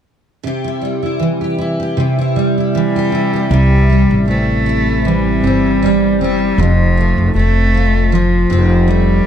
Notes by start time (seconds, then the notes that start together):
0.43 C3 G4
0.64 E4
0.81 G3
1.03 E4
1.20 E3
1.41 G4
1.58 E4
1.80 G4
1.97 C3 G4
2.19 E4
2.36 G3
2.58 E4
2.75 E3 G3
2.96 G4
3.12 E4
3.33 G4
3.51 C2 C3 G3
3.90 G3
4.11 A1
4.28 A3 C4
4.66 E4
5.05 E3 G3
5.43 G1 C4
5.83 G3
6.21 G3 C4
6.58 F1 F2 F3
6.97 A3
7.18 F1
7.35 F1 A3 C4
7.74 F4
8.12 F3
8.50 F1 C4
8.88 G3 A3